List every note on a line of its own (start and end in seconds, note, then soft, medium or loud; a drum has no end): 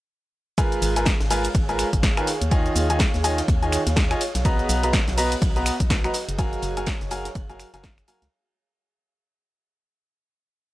0.58 0.93 G#3 loud
0.58 0.93 F4 medium
0.58 4.83 G#4 medium
0.58 0.93 A#4 medium
0.58 0.93 B4 medium
0.58 0.93 G#5 loud
0.58 kick loud
0.58 closed hi-hat medium
0.58 ride medium
0.58 shaker soft
0.72 closed hi-hat soft
0.72 shaker soft
0.82 1.12 G#1 loud
0.82 4.99 F5 medium
0.82 open hi-hat loud
0.82 ride medium
0.82 shaker medium
0.96 1.06 G#3 medium
0.96 1.06 F4 medium
0.96 1.06 A#4 medium
0.96 1.06 B4 medium
0.96 1.06 G#5 medium
0.96 closed hi-hat medium
0.96 shaker soft
1.03 4.99 C#5 medium
1.03 kick loud
1.03 snare loud
1.03 closed hi-hat medium
1.03 ride medium
1.03 shaker soft
1.20 1.48 G#1 medium
1.20 snare medium
1.20 closed hi-hat soft
1.20 shaker soft
1.30 1.44 G#3 loud
1.30 1.44 F4 medium
1.30 1.44 A#4 medium
1.30 1.44 B4 medium
1.30 1.44 G#5 loud
1.30 open hi-hat medium
1.30 shaker medium
1.44 closed hi-hat medium
1.44 ride soft
1.44 shaker soft
1.55 1.84 G#1 loud
1.55 kick loud
1.55 closed hi-hat medium
1.55 ride medium
1.55 shaker soft
1.69 1.87 G#3 medium
1.69 1.87 F4 medium
1.69 1.87 A#4 medium
1.69 1.87 B4 medium
1.69 1.87 G#5 medium
1.69 closed hi-hat soft
1.69 shaker soft
1.79 finger snap medium
1.79 open hi-hat loud
1.79 ride medium
1.79 shaker medium
1.93 2.21 G#1 loud
1.93 kick medium
1.93 closed hi-hat medium
1.93 shaker soft
2.03 kick loud
2.03 snare loud
2.03 closed hi-hat medium
2.03 ride medium
2.03 shaker soft
2.17 2.26 D#3 medium
2.17 2.26 F4 medium
2.17 2.26 A#4 medium
2.17 2.26 B4 medium
2.17 2.26 G#5 medium
2.17 finger snap medium
2.17 closed hi-hat soft
2.17 shaker soft
2.27 snare soft
2.27 open hi-hat medium
2.27 ride medium
2.27 shaker medium
2.41 2.69 D#2 medium
2.41 closed hi-hat medium
2.41 shaker soft
2.51 2.87 D#3 loud
2.51 2.86 F4 medium
2.51 2.86 C#5 medium
2.51 2.86 D#5 medium
2.51 2.86 G#5 loud
2.51 kick loud
2.51 closed hi-hat medium
2.51 ride medium
2.51 shaker soft
2.66 closed hi-hat soft
2.66 shaker soft
2.75 3.05 D#2 loud
2.75 open hi-hat loud
2.75 ride medium
2.75 shaker medium
2.90 3.00 D#3 medium
2.90 3.00 F4 medium
2.90 3.00 C#5 medium
2.90 3.00 D#5 medium
2.90 3.00 G#5 medium
2.90 closed hi-hat medium
2.90 shaker soft
2.99 kick loud
2.99 snare loud
2.99 closed hi-hat medium
2.99 ride medium
2.99 shaker soft
3.14 3.42 D#2 medium
3.14 snare soft
3.14 closed hi-hat soft
3.14 shaker soft
3.24 3.38 D#3 loud
3.24 3.38 F4 medium
3.24 3.38 C#5 medium
3.24 3.38 D#5 medium
3.24 3.38 G#5 loud
3.24 open hi-hat medium
3.24 ride medium
3.24 shaker medium
3.38 snare medium
3.38 closed hi-hat medium
3.38 shaker soft
3.48 3.78 D#2 loud
3.48 kick loud
3.48 closed hi-hat medium
3.48 ride medium
3.48 shaker soft
3.62 3.80 D#3 medium
3.62 3.80 F4 medium
3.62 3.80 C#5 medium
3.62 3.80 D#5 medium
3.62 3.80 G#5 medium
3.62 closed hi-hat soft
3.62 shaker soft
3.72 finger snap medium
3.72 open hi-hat loud
3.72 ride medium
3.72 shaker medium
3.86 4.15 D#2 loud
3.86 snare soft
3.86 closed hi-hat medium
3.86 shaker soft
3.96 kick loud
3.96 snare loud
3.96 closed hi-hat medium
3.96 ride loud
3.96 shaker soft
4.11 4.20 F4 medium
4.11 4.20 C#5 medium
4.11 4.20 D#5 medium
4.11 4.20 G#5 loud
4.11 finger snap medium
4.11 closed hi-hat soft
4.11 shaker soft
4.21 7.03 F#4 medium
4.21 open hi-hat loud
4.21 ride medium
4.21 shaker medium
4.35 4.63 B1 medium
4.35 snare medium
4.35 closed hi-hat medium
4.35 shaker soft
4.45 4.80 B3 medium
4.45 4.80 F#4 medium
4.45 4.80 B4 medium
4.45 4.80 D#5 medium
4.45 4.80 A#5 loud
4.45 kick loud
4.45 closed hi-hat medium
4.45 ride medium
4.45 shaker soft
4.59 closed hi-hat soft
4.59 shaker soft
4.69 4.99 B1 loud
4.69 open hi-hat loud
4.69 ride medium
4.69 shaker medium
4.83 4.93 B3 medium
4.83 4.93 F#4 medium
4.83 4.93 B4 medium
4.83 6.14 B4 medium
4.83 4.93 D#5 medium
4.83 4.93 A#5 medium
4.83 closed hi-hat soft
4.83 shaker soft
4.93 kick loud
4.93 snare loud
4.93 closed hi-hat medium
4.93 ride medium
4.93 shaker soft
5.08 5.35 B1 medium
5.08 7.03 D#5 medium
5.08 snare medium
5.08 closed hi-hat soft
5.08 shaker soft
5.17 5.31 B3 loud
5.17 5.31 F#4 medium
5.17 5.31 B4 medium
5.17 5.31 D#5 medium
5.17 5.31 A#5 loud
5.17 open hi-hat medium
5.17 open hi-hat loud
5.17 shaker medium
5.32 closed hi-hat medium
5.32 ride soft
5.32 shaker soft
5.42 5.71 B1 loud
5.42 kick loud
5.42 closed hi-hat medium
5.42 ride medium
5.42 shaker soft
5.56 5.74 B3 medium
5.56 5.74 F#4 medium
5.56 5.74 B4 medium
5.56 5.74 D#5 medium
5.56 5.74 A#5 medium
5.56 closed hi-hat soft
5.56 shaker soft
5.66 finger snap medium
5.66 open hi-hat loud
5.66 ride medium
5.66 shaker medium
5.80 6.08 B1 loud
5.80 kick medium
5.80 closed hi-hat medium
5.80 shaker soft
5.90 kick loud
5.90 snare loud
5.90 closed hi-hat medium
5.90 ride medium
5.90 shaker soft
6.04 6.13 F#3 medium
6.04 6.13 F#4 medium
6.04 6.13 B4 medium
6.04 6.13 D#5 medium
6.04 6.13 A#5 loud
6.04 finger snap medium
6.04 closed hi-hat soft
6.04 shaker soft
6.14 8.32 G#4 medium
6.14 snare soft
6.14 open hi-hat loud
6.14 ride medium
6.14 shaker medium
6.29 6.56 F#1 medium
6.29 8.32 C#5 medium
6.29 closed hi-hat medium
6.29 shaker soft
6.39 6.74 F#3 loud
6.39 6.74 F#4 medium
6.39 6.74 A#4 medium
6.39 6.74 F5 medium
6.39 6.74 G#5 loud
6.39 kick loud
6.39 closed hi-hat medium
6.39 ride medium
6.39 shaker soft
6.53 closed hi-hat soft
6.53 shaker soft
6.62 6.92 F#1 loud
6.62 open hi-hat loud
6.62 ride medium
6.62 shaker medium
6.77 6.87 F#3 medium
6.77 6.87 F#4 medium
6.77 6.87 A#4 medium
6.77 6.87 F5 medium
6.77 6.87 G#5 medium
6.77 closed hi-hat soft
6.77 shaker soft
6.86 kick loud
6.86 snare loud
6.86 closed hi-hat medium
6.86 ride medium
6.86 shaker soft
7.01 7.29 F#1 medium
7.01 8.32 F5 medium
7.01 snare soft
7.01 closed hi-hat soft
7.01 shaker soft
7.11 7.25 F#3 loud
7.11 7.25 F#4 medium
7.11 7.25 A#4 medium
7.11 7.25 F5 medium
7.11 7.25 G#5 loud
7.11 open hi-hat medium
7.11 ride medium
7.11 shaker medium
7.25 snare medium
7.25 closed hi-hat medium
7.25 shaker soft
7.35 7.65 F#1 loud
7.35 kick loud
7.35 closed hi-hat medium
7.35 ride medium
7.35 shaker soft
7.50 7.67 F#3 medium
7.50 7.67 F#4 medium
7.50 7.67 A#4 medium
7.50 7.67 F5 medium
7.50 7.67 G#5 medium
7.50 closed hi-hat soft
7.50 shaker soft
7.59 finger snap medium
7.59 open hi-hat loud
7.59 ride medium
7.59 shaker medium
7.74 8.02 F#1 loud
7.74 7.83 F#3 medium
7.74 7.83 F#4 medium
7.74 7.83 A#4 medium
7.74 7.83 F5 medium
7.74 7.83 G#5 loud
7.74 snare soft
7.74 closed hi-hat medium
7.74 shaker soft
7.83 kick loud
7.83 snare loud
7.83 closed hi-hat medium
7.83 ride medium
7.83 shaker soft
7.98 finger snap medium
7.98 closed hi-hat soft
7.98 shaker soft
8.08 8.22 F#3 medium
8.08 8.22 F#4 medium
8.08 8.22 A#4 medium
8.08 8.22 F5 medium
8.08 8.22 G#5 medium
8.08 open hi-hat loud
8.08 ride medium
8.08 shaker medium
8.22 8.28 C#2 medium
8.22 snare medium
8.22 closed hi-hat soft
8.22 shaker soft